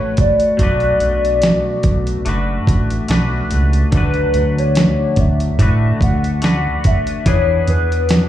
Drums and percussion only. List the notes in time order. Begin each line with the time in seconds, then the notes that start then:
0.17 kick, closed hi-hat
0.40 closed hi-hat
0.59 kick, closed hi-hat
0.80 closed hi-hat
1.00 closed hi-hat
1.25 closed hi-hat
1.42 snare, closed hi-hat
1.83 kick, closed hi-hat
2.07 closed hi-hat
2.26 closed hi-hat
2.67 kick, closed hi-hat
2.90 closed hi-hat
3.08 snare, closed hi-hat
3.51 closed hi-hat
3.73 closed hi-hat
3.92 kick, closed hi-hat
4.14 closed hi-hat
4.34 closed hi-hat
4.58 closed hi-hat
4.75 snare, closed hi-hat
5.16 kick, closed hi-hat
5.40 closed hi-hat
5.59 kick, closed hi-hat
6.01 kick, closed hi-hat
6.24 closed hi-hat
6.42 snare, closed hi-hat
6.84 kick, closed hi-hat
7.07 closed hi-hat
7.26 kick, closed hi-hat
7.68 closed hi-hat
7.92 closed hi-hat
8.09 snare, closed hi-hat